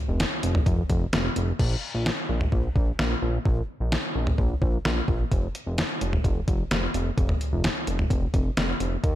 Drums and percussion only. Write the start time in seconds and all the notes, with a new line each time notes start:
0.20 snare, closed hi-hat
0.43 closed hi-hat
0.55 mid tom
0.66 kick, closed hi-hat
0.90 kick, closed hi-hat
1.13 snare, closed hi-hat
1.36 closed hi-hat
1.59 kick, crash
2.06 snare
2.41 mid tom
2.52 kick
2.76 kick
2.99 snare
3.45 kick
3.92 snare
4.27 mid tom
4.38 kick
4.62 kick
4.85 snare
5.08 kick
5.32 kick, closed hi-hat
5.55 closed hi-hat
5.78 snare, closed hi-hat
6.01 closed hi-hat
6.13 mid tom
6.24 kick, closed hi-hat
6.48 kick, closed hi-hat
6.71 snare, closed hi-hat
6.94 closed hi-hat
7.18 kick, closed hi-hat
7.29 mid tom
7.41 closed hi-hat
7.64 snare, closed hi-hat
7.87 closed hi-hat
7.99 mid tom
8.10 kick, closed hi-hat
8.34 kick, closed hi-hat
8.57 snare, closed hi-hat
8.80 closed hi-hat
9.04 kick, closed hi-hat